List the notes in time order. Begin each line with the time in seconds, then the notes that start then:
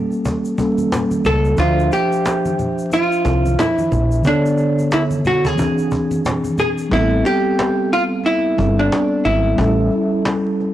Already playing: G3 A#3 C#4 A4
0.12 shaker
0.25 cajon bass, high conga, shaker
0.45 shaker
0.58 G3 A#3 C#4 A4, cajon bass, shaker
0.78 high conga, shaker
0.92 cajon slap, low conga, shaker
1.11 high conga, shaker
1.25 C#2 A4, cajon slap, low conga, shaker
1.45 shaker
1.56 D2 F3 D4 F4 E5, cajon bass, shaker
1.62 C5
1.79 shaker
1.91 G4, cajon slap, shaker
2.12 shaker
2.25 cajon slap, shaker
2.45 high conga, shaker
2.59 cajon slap, low conga, shaker
2.79 shaker
2.90 F4, cajon slap, high conga, shaker
3.12 shaker
3.25 C2, cajon bass, shaker
3.46 high conga, shaker
3.59 E4, cajon slap, low conga, shaker
3.78 high conga, shaker
3.92 A#1, cajon slap, low conga, shaker
4.11 shaker
4.22 D3 B3 C#5, cajon bass, shaker
4.27 D4 A4
4.46 shaker
4.58 cajon slap, shaker
4.79 shaker
4.91 E4, cajon slap, shaker
5.11 high conga, shaker
5.25 F#4, cajon slap, low conga, shaker
5.45 G#4, cajon bass, shaker
5.55 E3 C4, cajon bass, high conga, shaker
5.59 D4 G#4
5.78 shaker
5.91 cajon bass, shaker
6.11 high conga, shaker
6.25 cajon slap, low conga, shaker
6.44 high conga, shaker
6.58 G#4, cajon slap, low conga, shaker
6.78 shaker
6.89 A1 G3 B3 C4 E4, cajon bass
6.95 A4
7.24 G4, cajon slap
7.59 cajon slap
7.93 F4, cajon slap
8.24 E4, cajon slap
8.57 G1 G3 B3 C4 A4, cajon bass
8.79 D4
8.92 cajon slap
9.25 G#1 E4, cajon slap
9.56 A1 G3 C#4 E4, cajon bass
9.61 A4
9.91 cajon slap
10.25 cajon slap
10.60 cajon slap